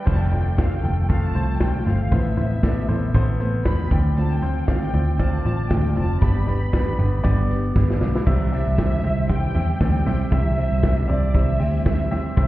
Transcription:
0.05 F1 C3 F3 A3 C4 F4 A4 C5 A5, kick, crash
0.22 G5
0.32 A3 C4 F4 A4 D5, closed hi-hat, floor tom
0.57 A3 C4 F4 G4 A4 F5, kick, snare, closed hi-hat
0.73 G5, closed hi-hat
0.83 F1 A3 C4 F4 A4, closed hi-hat, floor tom
1.08 F3 A3 C4 F4 A4 F5, kick, closed hi-hat
1.25 A5
1.35 C2 A3 C4 F4 C5, closed hi-hat
1.59 B1 A3 C4 F4 A4 C5 G5, kick, snare, closed hi-hat
1.86 G1 A3 C4 F4 A4 C5 F5, snare, closed hi-hat, floor tom
2.11 A1 A2 E3 A3 B3 C4 E4 A4 B4 C5 E5, kick, closed hi-hat
2.37 A3 B3 C4 E4 A4 B4 C5, closed hi-hat, floor tom
2.63 A3 B3 C4 E4 A4 B4 D5, kick, snare, closed hi-hat
2.88 A1 A3 B3 C4 E4 A4 B4 C5, closed hi-hat, floor tom
3.14 A1 A2 E3 A3 B3 C4 E4 A4 B4 C5, kick, closed hi-hat
3.40 A3 B3 C4 E4 A4 B4 C5, closed hi-hat
3.65 E2 A3 B3 C4 E4 A4 B4 C5 B5, kick, snare, closed hi-hat
3.90 D2 D3 C4 F4 C5 D5 G5, kick, snare, closed hi-hat, floor tom
4.17 D3 A3 C4 F4 C5 A5, closed hi-hat
4.32 G5
4.42 C4 F4 C5, closed hi-hat, floor tom
4.58 closed hi-hat
4.67 A3 C4 F4 C5 D5 F5, kick, snare, closed hi-hat
4.83 G5, closed hi-hat
4.93 D2 C4 F4 C5 D5, closed hi-hat, floor tom
5.19 D3 A3 C4 F4 C5 D5 A5, kick, closed hi-hat
5.33 A5
5.45 A1 C4 F4 C5 D5, closed hi-hat
5.70 D2 A3 C4 F4 C5 D5 G5, kick, snare, closed hi-hat
5.96 F1 C4 F4 C5 D5 A5, closed hi-hat, floor tom
6.22 G1 G2 G3 B3 D4 G4 B4 D5 B5, kick, closed hi-hat
6.47 B3 D4 G4 B4 D5, closed hi-hat, floor tom
6.72 G3 B3 D4 G4 B4 D5, kick, snare, closed hi-hat
6.88 closed hi-hat
6.98 G1 B3 D4 G4 B4 D5, closed hi-hat, floor tom
7.23 G1 G3 B3 D4 G4 B4 D5, kick, closed hi-hat
7.50 D4 G4 B4, closed hi-hat
7.75 G1 G3 D4 G4 B4 D5 B5, kick, snare
7.89 F5 D6, snare
8.01 B1 D4 G4 B4 F5 D6, snare
8.15 D5 B5, snare
8.26 C2 C3 E3 G3 C4 E4 G4 C5 E5, kick, crash
8.52 G3 C4 E4 G4 C5 D5 E5, hi-hat pedal, open hi-hat
8.67 C2
8.78 G3 C4 E4 G4 C5 E5, kick, snare, hi-hat pedal, open hi-hat
9.03 C2 G3 C4 E4 G4 C5 E5, floor tom, hi-hat pedal, open hi-hat
9.29 C3 E3 G3 C4 E4 G4 C5 E5 G5, kick, hi-hat pedal, open hi-hat
9.55 E2 G3 C4 E4 G4 C5 E5, floor tom, hi-hat pedal, open hi-hat
9.80 D2 G3 C4 E4 G4 C5 D5 G5, kick, snare, hi-hat pedal, open hi-hat
10.06 B1 G3 C4 E4 G4 C5 E5, snare, floor tom, hi-hat pedal, open hi-hat
10.31 C2 C3 E3 G3 C4 E4 G4 C5 E5, kick, hi-hat pedal, open hi-hat
10.57 G3 C4 E4 G4 C5 E5, hi-hat pedal, open hi-hat
10.72 C2
10.82 G3 C4 E4 G4 C5 E5, kick, snare, hi-hat pedal, open hi-hat
11.08 C2 G3 C4 E4 G4 C5 D5 E5, floor tom, hi-hat pedal, open hi-hat
11.34 C3 E3 G3 C4 E4 G4 C5 E5, kick, hi-hat pedal, open hi-hat
11.59 D2 G3 C4 E4 G4 C5 G5, hi-hat pedal, open hi-hat
11.85 G3 C4 E4 G4 C5 E5, kick, snare, hi-hat pedal, open hi-hat
12.11 G3 C4 E4 G4 C5 E5, snare, floor tom, hi-hat pedal, open hi-hat
12.36 C2 C3 E3 G3 C4 E4 G4 C5 E5, kick, hi-hat pedal, open hi-hat

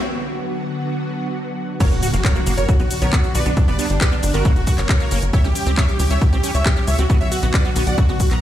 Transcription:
0.04 D3 F#3 B3 F#4
1.80 C#3 F#3 A#3 F#4 A#4 C#5, kick, closed hi-hat, crash, impact, shaker
1.91 F#1 F#4, closed hi-hat, shaker
2.02 F#4, open hi-hat, shaker
2.13 F#1 A#3 F#4, closed hi-hat, shaker
2.24 A#4 C#5, kick, clap, closed hi-hat, shaker
2.35 A#3 F#4, closed hi-hat, shaker
2.46 F#1 A#3 F#4, open hi-hat, shaker
2.57 F#1 A#4 C#5, closed hi-hat, shaker
2.68 D3 B3 F#4, kick, closed hi-hat, shaker
2.80 B1 B3 F#4, closed hi-hat, shaker
2.91 F#4, open hi-hat, shaker
3.02 B1 B3 A#4 C#5, closed hi-hat, shaker
3.13 B3 F#4, kick, clap, closed hi-hat, shaker
3.24 F#4, closed hi-hat, shaker
3.35 B1 F#4 B4 D5, open hi-hat, shaker
3.46 B1 B3 D4, closed hi-hat, shaker
3.57 G3 D4 G4, kick, closed hi-hat, shaker
3.68 G1 B3 B4 D5, closed hi-hat, shaker
3.79 B3 D4, open hi-hat, shaker
3.90 G1 D4, closed hi-hat, shaker
4.01 G4 B4, kick, clap, closed hi-hat, shaker
4.12 B3 D4, closed hi-hat, shaker
4.23 G1 D4, open hi-hat, shaker
4.34 G1 B3 F#4 A#4, closed hi-hat, shaker
4.45 C#3 F#3 A#3 F#4, kick, closed hi-hat, shaker
4.56 F#1 F#4, closed hi-hat, shaker
4.67 F#4, kick, open hi-hat, shaker
4.78 F#1 A#3 A#4 C#5, clap, closed hi-hat, shaker
4.89 kick, clap, closed hi-hat, shaker
5.00 A#3, closed hi-hat, shaker
5.11 F#1 A#3, open hi-hat, shaker
5.22 F#1, closed hi-hat, shaker
5.33 E3 G3 C#4 G4 C#5 E5, kick, closed hi-hat, shaker
5.44 C#2 C#4 G4, closed hi-hat, shaker
5.55 G4, open hi-hat, shaker
5.66 C#2 C4 G4, closed hi-hat, shaker
5.77 C#4 C#5 E5, kick, clap, closed hi-hat, shaker
5.88 G4, closed hi-hat, shaker
5.99 C#2 G4, open hi-hat, shaker
6.10 C#2 C#4 C#5 E5, closed hi-hat, shaker
6.21 G4, kick, closed hi-hat, shaker
6.32 C#2 C4 G4, closed hi-hat, shaker
6.43 C#4 G4, open hi-hat, shaker
6.54 C#2 C#5 E5, closed hi-hat, shaker
6.65 G4, kick, clap, closed hi-hat, shaker
6.76 C#4 G4, closed hi-hat, shaker
6.87 C#2 C#5 E5, open hi-hat, shaker
6.98 C#2 C4 F#4, closed hi-hat, shaker
7.09 D3 F#3 B3 F#4, kick, closed hi-hat, shaker
7.20 B1 C#5 E5, closed hi-hat, shaker
7.32 F#4, open hi-hat, shaker
7.43 B1 B3 F#4, closed hi-hat, shaker
7.54 B4 D5, kick, clap, closed hi-hat, shaker
7.65 B3 F#4, closed hi-hat, shaker
7.76 B1 B3 F#4, open hi-hat, shaker
7.87 B1 D5 F#5, closed hi-hat, shaker
7.98 F#4, kick, closed hi-hat, shaker
8.09 B1 B3 F#4, closed hi-hat, shaker
8.20 F#4, kick, open hi-hat, shaker
8.31 B1 B3 F#5 A#5, clap, closed hi-hat, shaker

